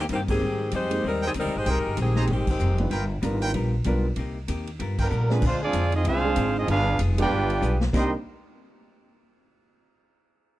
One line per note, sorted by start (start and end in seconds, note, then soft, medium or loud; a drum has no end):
0.00 0.05 D#3 medium
0.00 0.05 A#3 medium
0.00 0.05 C4 medium
0.00 0.05 G4 medium
0.09 0.40 G2 medium
0.09 0.29 C3 medium
0.09 0.20 D#3 medium
0.09 0.30 G3 medium
0.09 0.30 A#3 medium
0.09 0.20 A#3 medium
0.09 0.20 C4 medium
0.09 0.30 D#4 medium
0.09 kick soft
0.09 hi-hat pedal soft
0.09 ride medium
0.13 0.21 G4 medium
0.28 0.70 D#3 medium
0.28 0.40 G#3 medium
0.28 0.40 A#3 medium
0.28 0.40 C4 medium
0.28 0.70 C4 medium
0.28 0.40 D#4 medium
0.28 0.40 G4 medium
0.28 0.70 G4 medium
0.28 0.70 G#4 medium
0.28 kick medium
0.28 crash medium
0.41 0.61 G#2 soft
0.41 0.71 G#2 medium
0.41 0.61 G3 soft
0.41 0.62 C4 soft
0.41 0.62 D#4 medium
0.71 1.03 F2 medium
0.71 0.92 G#2 medium
0.71 0.92 G3 medium
0.71 1.05 G#3 medium
0.71 0.93 C4 medium
0.71 0.93 D#4 medium
0.71 1.05 D#4 medium
0.71 1.05 G4 medium
0.71 1.05 C5 loud
0.71 kick soft
0.71 hi-hat pedal medium
0.71 ride medium
0.90 1.02 G#3 medium
0.90 1.02 A#3 medium
0.90 1.02 C4 medium
0.90 1.02 D#4 medium
0.90 1.02 G4 medium
0.90 ride medium
1.02 1.34 D#2 medium
1.02 1.23 G#2 soft
1.02 1.24 G3 soft
1.02 1.24 C4 medium
1.02 1.25 D#4 soft
1.02 kick soft
1.07 1.23 G3 medium
1.07 1.23 C4 medium
1.07 1.23 D#4 medium
1.07 1.23 A#4 loud
1.22 1.31 D#4 medium
1.22 1.31 G#4 medium
1.22 1.31 C5 medium
1.22 1.31 G5 medium
1.27 1.32 D#3 medium
1.27 1.31 G3 medium
1.27 1.32 C4 medium
1.27 1.31 G#4 medium
1.34 1.46 D2 medium
1.34 1.55 G#2 medium
1.34 1.55 G3 medium
1.34 1.55 C4 medium
1.34 1.56 D#4 medium
1.34 kick soft
1.34 hi-hat pedal medium
1.34 ride medium
1.38 1.55 G3 medium
1.38 1.55 C4 medium
1.38 1.55 D#4 medium
1.38 1.55 A#4 loud
1.45 1.55 C2 medium
1.55 1.65 G#1 medium
1.55 1.68 G#3 medium
1.55 1.68 D#4 medium
1.55 1.68 G4 medium
1.55 1.68 C5 medium
1.65 1.77 C2 medium
1.65 1.86 G#2 soft
1.65 1.86 G3 medium
1.65 1.99 G#3 medium
1.65 1.87 C4 soft
1.65 1.79 D#4 medium
1.65 1.87 D#4 medium
1.65 1.99 D#4 medium
1.65 1.99 G4 medium
1.65 1.79 G#4 medium
1.65 1.99 A#4 loud
1.65 1.79 C5 medium
1.65 1.79 G5 loud
1.65 kick soft
1.65 ride medium
1.76 1.85 G#1 medium
1.86 1.96 G1 medium
1.97 2.28 A#1 medium
1.97 2.17 G#2 medium
1.97 2.18 G3 medium
1.97 2.18 C4 medium
1.97 2.18 D#4 medium
1.97 kick soft
1.97 hi-hat pedal medium
1.97 ride medium
2.01 2.29 D#3 medium
2.01 2.29 C4 medium
2.01 2.29 G4 medium
2.01 2.29 G#4 medium
2.16 2.28 G#3 medium
2.16 2.28 A#3 medium
2.16 2.28 C4 medium
2.16 2.25 D#4 medium
2.16 2.28 D#4 medium
2.16 2.28 G4 medium
2.16 2.25 G#4 medium
2.16 2.24 C5 medium
2.16 2.25 A#5 medium
2.16 snare medium
2.27 2.59 G#1 medium
2.27 2.49 G#2 soft
2.27 2.49 G3 soft
2.27 2.49 C4 soft
2.27 2.50 D#4 medium
2.27 kick soft
2.27 ride medium
2.32 2.49 D#3 medium
2.32 2.49 G#3 medium
2.32 2.49 C4 medium
2.32 2.49 G4 medium
2.47 2.90 D#3 medium
2.47 2.90 G#3 medium
2.47 2.90 C4 medium
2.47 2.90 G4 medium
2.47 kick medium
2.47 crash medium
2.59 2.90 F1 medium
2.59 2.80 G#2 medium
2.59 2.81 G3 medium
2.59 2.81 C4 medium
2.59 2.81 D#4 medium
2.59 hi-hat pedal medium
2.78 2.91 G3 medium
2.78 2.91 B3 medium
2.78 2.91 D4 medium
2.78 2.91 F4 medium
2.78 2.91 B4 medium
2.78 ride soft
2.90 3.22 G1 medium
2.90 3.11 G3 soft
2.90 3.12 B3 medium
2.90 3.04 F4 medium
2.90 3.12 F4 medium
2.90 3.04 A#4 medium
2.90 3.12 A#4 medium
2.90 3.04 B4 medium
2.90 3.04 G5 loud
2.90 kick soft
2.90 ride medium
3.22 3.53 G#1 medium
3.22 3.43 G3 medium
3.22 3.69 G3 medium
3.22 3.43 B3 medium
3.22 3.70 B3 medium
3.22 3.70 D4 medium
3.22 3.43 F4 medium
3.22 3.70 F4 medium
3.22 3.70 A#4 medium
3.22 3.44 A#4 medium
3.22 kick soft
3.22 hi-hat pedal medium
3.22 ride medium
3.42 3.50 F4 medium
3.42 3.50 A#4 medium
3.42 3.50 B4 medium
3.42 3.50 G5 loud
3.42 ride soft
3.54 3.85 A#1 medium
3.54 3.75 G3 medium
3.54 3.75 B3 medium
3.54 3.75 F4 medium
3.54 3.76 A#4 medium
3.54 kick soft
3.54 ride medium
3.84 4.16 B1 medium
3.84 4.06 G3 medium
3.84 4.03 G3 medium
3.84 4.03 B3 medium
3.84 4.07 B3 medium
3.84 4.03 D4 medium
3.84 4.03 F4 medium
3.84 4.07 F4 medium
3.84 4.03 A#4 medium
3.84 4.07 A#4 medium
3.84 kick soft
3.84 hi-hat pedal medium
3.84 ride medium
4.16 4.47 C2 medium
4.16 4.37 C3 medium
4.16 4.38 A#3 medium
4.16 4.38 D#4 medium
4.16 4.38 G4 medium
4.16 kick soft
4.16 ride medium
4.48 4.79 D#2 medium
4.48 4.68 C3 medium
4.48 4.69 A#3 medium
4.48 4.69 D#4 medium
4.48 4.69 G4 medium
4.48 kick soft
4.48 hi-hat pedal medium
4.48 ride medium
4.67 ride soft
4.79 5.10 G2 medium
4.79 5.00 G3 medium
4.79 5.00 B3 medium
4.79 5.01 F4 medium
4.79 5.01 A#4 medium
4.79 kick soft
4.79 ride medium
4.97 5.27 D3 medium
4.97 5.27 F3 medium
4.97 5.07 F4 medium
4.97 5.27 A#4 medium
4.97 5.07 A#4 medium
4.97 5.29 A#4 medium
4.97 5.07 B4 medium
4.97 5.07 G5 medium
4.97 kick medium
4.97 crash medium
5.01 5.30 B3 medium
5.01 5.29 D4 medium
5.10 5.42 A#2 medium
5.10 5.31 G3 medium
5.10 5.31 B3 medium
5.10 5.32 F4 medium
5.10 5.32 A#4 medium
5.10 hi-hat pedal soft
5.29 5.42 D3 medium
5.29 5.42 F3 medium
5.29 5.41 G#3 medium
5.29 5.43 A#3 medium
5.29 5.42 B3 medium
5.29 5.41 C4 medium
5.29 5.41 D4 medium
5.29 5.43 D4 medium
5.29 5.42 F4 medium
5.29 5.42 G#4 medium
5.29 5.43 B4 medium
5.29 snare medium
5.42 5.73 D2 medium
5.42 5.63 D3 soft
5.42 5.60 F3 medium
5.42 5.61 G#3 medium
5.42 5.63 G#3 medium
5.42 5.62 G#3 medium
5.42 5.61 C4 medium
5.42 5.64 C4 medium
5.42 5.62 D4 medium
5.42 5.64 F4 medium
5.42 5.62 F4 medium
5.42 5.62 C5 loud
5.42 kick medium
5.42 crash medium
5.62 5.91 F3 medium
5.62 5.91 G#3 medium
5.62 5.92 C4 medium
5.62 5.91 D4 medium
5.62 5.92 F4 medium
5.62 5.92 G#4 medium
5.62 5.92 D5 medium
5.73 6.04 F2 medium
5.73 5.94 D3 medium
5.73 5.94 G#3 medium
5.73 5.95 C4 medium
5.73 5.95 F4 medium
5.73 kick soft
5.73 hi-hat pedal medium
5.73 ride medium
5.92 6.05 C4 medium
5.92 6.04 D#4 medium
5.92 6.05 F4 medium
5.92 6.05 G#4 medium
5.92 6.05 D#5 medium
5.92 ride medium
6.04 6.35 C2 medium
6.04 6.25 D3 medium
6.04 6.52 G#3 loud
6.04 6.26 G#3 soft
6.04 6.52 C4 loud
6.04 6.26 C4 medium
6.04 6.53 D4 medium
6.04 6.52 F4 loud
6.04 6.27 F4 medium
6.04 6.53 G#4 medium
6.04 6.53 C5 medium
6.04 6.53 F5 loud
6.04 kick soft
6.04 ride medium
6.24 6.66 G#3 medium
6.24 6.66 C4 medium
6.24 6.66 D4 medium
6.24 6.66 F4 medium
6.24 6.66 G#4 medium
6.36 6.67 G#1 loud
6.36 6.56 D3 medium
6.36 6.57 G#3 medium
6.36 6.57 C4 medium
6.36 6.57 F4 medium
6.36 kick soft
6.36 hi-hat pedal medium
6.36 ride medium
6.56 6.69 C4 medium
6.56 6.68 D#4 medium
6.56 6.70 F4 medium
6.56 6.69 G#4 medium
6.56 6.69 D#5 loud
6.67 6.98 G1 medium
6.67 6.88 G3 soft
6.67 6.97 B3 loud
6.67 6.88 B3 medium
6.67 6.97 D4 loud
6.67 6.98 D4 loud
6.67 6.97 F4 loud
6.67 6.89 F4 medium
6.67 6.89 G#4 medium
6.67 6.98 G#4 loud
6.67 6.98 B4 loud
6.67 6.98 F5 loud
6.67 kick soft
6.67 ride medium
6.99 7.29 F1 loud
6.99 7.19 G3 medium
6.99 7.20 B3 medium
6.99 7.20 F4 medium
6.99 7.20 G#4 medium
6.99 kick soft
6.99 hi-hat pedal medium
6.99 ride medium
7.18 7.29 G#3 medium
7.18 7.29 B3 medium
7.18 7.78 B3 medium
7.18 7.30 D4 medium
7.18 7.78 D4 medium
7.18 7.30 F4 medium
7.18 7.78 F4 loud
7.18 7.30 G4 medium
7.18 7.78 G4 loud
7.18 7.78 B4 medium
7.18 7.78 D5 medium
7.18 7.78 G5 loud
7.18 ride medium
7.30 7.61 G1 medium
7.30 7.51 G3 soft
7.30 7.51 B3 medium
7.30 7.52 F4 medium
7.30 7.52 G#4 medium
7.30 kick soft
7.50 ride medium
7.61 7.92 B1 medium
7.61 7.82 G3 medium
7.61 7.82 B3 medium
7.61 7.82 F4 medium
7.61 7.83 G#4 medium
7.61 hi-hat pedal medium
7.81 snare medium
7.93 8.11 C2 loud
7.93 8.08 C3 medium
7.93 8.11 C3 medium
7.93 8.11 G3 medium
7.93 8.10 A#3 medium
7.93 8.11 A#3 medium
7.93 8.09 A#3 medium
7.93 8.10 C4 medium
7.93 8.11 D4 medium
7.93 8.11 D#4 medium
7.93 8.09 D#4 medium
7.93 8.11 G4 medium
7.93 8.09 G4 medium
7.93 8.12 A#4 medium
7.93 8.12 D#5 medium
7.93 8.12 G5 medium
7.93 8.12 C6 medium
7.93 kick medium
7.93 snare medium
7.93 crash medium